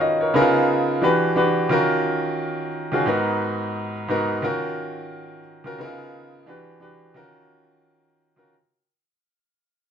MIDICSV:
0, 0, Header, 1, 2, 480
1, 0, Start_track
1, 0, Key_signature, -6, "minor"
1, 0, Tempo, 681044
1, 245, Time_signature, 4, 2, 24, 8
1, 6980, End_track
2, 0, Start_track
2, 0, Title_t, "Grand piano"
2, 0, Program_c, 0, 0
2, 0, Control_c, 0, 64, 127
2, 0, Note_on_c, 0, 51, 81
2, 0, Note_on_c, 0, 61, 70
2, 0, Note_on_c, 0, 65, 70
2, 0, Note_on_c, 0, 66, 78
2, 0, Note_on_c, 0, 70, 51
2, 0, Note_on_c, 0, 73, 57
2, 0, Note_on_c, 0, 77, 64
2, 7, Note_on_c, 0, 75, 62
2, 138, Note_off_c, 0, 75, 0
2, 146, Note_off_c, 0, 73, 0
2, 146, Note_on_c, 0, 73, 57
2, 152, Note_off_c, 0, 70, 0
2, 152, Note_on_c, 0, 70, 47
2, 238, Note_on_c, 0, 49, 81
2, 239, Note_on_c, 0, 59, 76
2, 244, Note_off_c, 0, 70, 0
2, 244, Note_on_c, 0, 63, 77
2, 248, Note_on_c, 0, 64, 60
2, 251, Note_on_c, 0, 68, 69
2, 253, Control_c, 0, 64, 0
2, 254, Note_off_c, 0, 65, 0
2, 254, Note_on_c, 0, 70, 95
2, 256, Note_off_c, 0, 51, 0
2, 256, Note_off_c, 0, 77, 0
2, 257, Note_off_c, 0, 66, 0
2, 258, Note_off_c, 0, 61, 0
2, 294, Note_on_c, 0, 65, 80
2, 299, Note_off_c, 0, 64, 0
2, 373, Note_off_c, 0, 73, 0
2, 396, Control_c, 0, 64, 127
2, 715, Note_on_c, 0, 52, 76
2, 721, Note_off_c, 0, 49, 0
2, 721, Note_off_c, 0, 59, 0
2, 721, Note_on_c, 0, 62, 65
2, 724, Note_off_c, 0, 63, 0
2, 725, Note_on_c, 0, 66, 68
2, 727, Note_off_c, 0, 68, 0
2, 729, Note_off_c, 0, 70, 0
2, 729, Note_on_c, 0, 67, 64
2, 733, Note_on_c, 0, 71, 91
2, 734, Control_c, 0, 64, 0
2, 749, Note_off_c, 0, 65, 0
2, 870, Control_c, 0, 64, 127
2, 920, Note_off_c, 0, 52, 0
2, 923, Note_off_c, 0, 62, 0
2, 925, Note_off_c, 0, 66, 0
2, 927, Note_off_c, 0, 67, 0
2, 929, Note_off_c, 0, 71, 0
2, 955, Note_on_c, 0, 52, 75
2, 959, Note_on_c, 0, 62, 70
2, 963, Note_on_c, 0, 66, 69
2, 966, Note_on_c, 0, 67, 67
2, 971, Note_on_c, 0, 71, 82
2, 1194, Note_on_c, 0, 51, 82
2, 1197, Note_off_c, 0, 66, 0
2, 1199, Note_off_c, 0, 52, 0
2, 1199, Note_on_c, 0, 61, 73
2, 1201, Note_off_c, 0, 62, 0
2, 1203, Note_on_c, 0, 65, 81
2, 1205, Note_off_c, 0, 67, 0
2, 1207, Note_off_c, 0, 71, 0
2, 1207, Note_on_c, 0, 66, 76
2, 1212, Control_c, 0, 64, 0
2, 1213, Note_on_c, 0, 70, 93
2, 1349, Control_c, 0, 64, 127
2, 1881, Note_off_c, 0, 51, 0
2, 1884, Note_off_c, 0, 61, 0
2, 1886, Note_off_c, 0, 65, 0
2, 1888, Note_off_c, 0, 66, 0
2, 1891, Note_off_c, 0, 70, 0
2, 2056, Note_on_c, 0, 51, 76
2, 2061, Note_on_c, 0, 61, 66
2, 2066, Note_on_c, 0, 65, 69
2, 2071, Note_on_c, 0, 66, 68
2, 2073, Note_on_c, 0, 68, 79
2, 2140, Note_off_c, 0, 51, 0
2, 2142, Note_off_c, 0, 61, 0
2, 2145, Note_off_c, 0, 65, 0
2, 2147, Note_off_c, 0, 66, 0
2, 2148, Note_off_c, 0, 68, 0
2, 2155, Note_on_c, 0, 44, 81
2, 2160, Note_on_c, 0, 59, 80
2, 2163, Note_on_c, 0, 63, 68
2, 2168, Note_on_c, 0, 66, 71
2, 2170, Control_c, 0, 64, 0
2, 2173, Note_on_c, 0, 70, 86
2, 2297, Control_c, 0, 64, 127
2, 2754, Note_off_c, 0, 44, 0
2, 2757, Note_off_c, 0, 59, 0
2, 2758, Note_off_c, 0, 63, 0
2, 2761, Note_off_c, 0, 66, 0
2, 2763, Note_off_c, 0, 70, 0
2, 2878, Note_on_c, 0, 44, 78
2, 2883, Note_on_c, 0, 59, 71
2, 2887, Note_on_c, 0, 63, 73
2, 2892, Note_on_c, 0, 66, 67
2, 2896, Note_on_c, 0, 70, 79
2, 3117, Note_on_c, 0, 51, 83
2, 3119, Note_off_c, 0, 66, 0
2, 3120, Note_off_c, 0, 44, 0
2, 3121, Note_on_c, 0, 61, 74
2, 3122, Note_off_c, 0, 59, 0
2, 3123, Note_off_c, 0, 70, 0
2, 3124, Note_off_c, 0, 63, 0
2, 3124, Note_on_c, 0, 65, 75
2, 3129, Note_on_c, 0, 66, 74
2, 3130, Control_c, 0, 64, 0
2, 3133, Note_on_c, 0, 70, 86
2, 3266, Control_c, 0, 64, 127
2, 3802, Note_off_c, 0, 51, 0
2, 3805, Note_off_c, 0, 61, 0
2, 3806, Note_off_c, 0, 65, 0
2, 3809, Note_off_c, 0, 66, 0
2, 3811, Note_off_c, 0, 70, 0
2, 3976, Note_on_c, 0, 51, 76
2, 3981, Note_on_c, 0, 61, 67
2, 3987, Note_on_c, 0, 65, 65
2, 3990, Note_on_c, 0, 66, 65
2, 3996, Note_on_c, 0, 70, 84
2, 4060, Note_off_c, 0, 51, 0
2, 4062, Note_off_c, 0, 61, 0
2, 4065, Note_off_c, 0, 65, 0
2, 4067, Note_off_c, 0, 66, 0
2, 4069, Note_off_c, 0, 70, 0
2, 4077, Note_on_c, 0, 49, 83
2, 4081, Note_on_c, 0, 59, 70
2, 4083, Note_on_c, 0, 63, 68
2, 4087, Note_on_c, 0, 64, 58
2, 4090, Control_c, 0, 64, 0
2, 4092, Note_on_c, 0, 68, 72
2, 4094, Note_on_c, 0, 70, 93
2, 4133, Note_on_c, 0, 65, 67
2, 4137, Note_off_c, 0, 64, 0
2, 4192, Control_c, 0, 64, 127
2, 4556, Note_on_c, 0, 52, 73
2, 4559, Note_off_c, 0, 49, 0
2, 4559, Note_on_c, 0, 62, 74
2, 4561, Note_off_c, 0, 59, 0
2, 4562, Note_off_c, 0, 63, 0
2, 4563, Note_on_c, 0, 66, 63
2, 4567, Note_off_c, 0, 68, 0
2, 4568, Note_off_c, 0, 70, 0
2, 4568, Note_on_c, 0, 67, 65
2, 4572, Control_c, 0, 64, 0
2, 4574, Note_on_c, 0, 71, 77
2, 4587, Note_off_c, 0, 65, 0
2, 4700, Control_c, 0, 64, 127
2, 4759, Note_off_c, 0, 52, 0
2, 4761, Note_off_c, 0, 62, 0
2, 4763, Note_off_c, 0, 66, 0
2, 4766, Note_off_c, 0, 67, 0
2, 4768, Note_off_c, 0, 71, 0
2, 4792, Note_on_c, 0, 52, 71
2, 4799, Note_on_c, 0, 62, 66
2, 4802, Note_on_c, 0, 66, 65
2, 4807, Note_on_c, 0, 67, 67
2, 4810, Note_on_c, 0, 71, 77
2, 5034, Note_on_c, 0, 51, 73
2, 5035, Note_off_c, 0, 66, 0
2, 5037, Note_off_c, 0, 52, 0
2, 5039, Note_on_c, 0, 61, 77
2, 5041, Note_off_c, 0, 62, 0
2, 5043, Note_on_c, 0, 65, 68
2, 5044, Note_off_c, 0, 67, 0
2, 5045, Note_on_c, 0, 66, 69
2, 5046, Note_off_c, 0, 71, 0
2, 5050, Control_c, 0, 64, 0
2, 5051, Note_on_c, 0, 70, 89
2, 5162, Control_c, 0, 64, 127
2, 5722, Note_off_c, 0, 51, 0
2, 5724, Note_off_c, 0, 61, 0
2, 5726, Note_off_c, 0, 65, 0
2, 5727, Note_off_c, 0, 66, 0
2, 5730, Note_off_c, 0, 70, 0
2, 5894, Note_on_c, 0, 51, 67
2, 5897, Note_on_c, 0, 61, 64
2, 5901, Note_on_c, 0, 65, 68
2, 5905, Note_on_c, 0, 66, 64
2, 5910, Note_on_c, 0, 70, 79
2, 5979, Note_off_c, 0, 51, 0
2, 5980, Note_off_c, 0, 61, 0
2, 5982, Note_off_c, 0, 65, 0
2, 5984, Note_off_c, 0, 66, 0
2, 5987, Note_off_c, 0, 70, 0
2, 6011, Control_c, 0, 64, 0
2, 6980, End_track
0, 0, End_of_file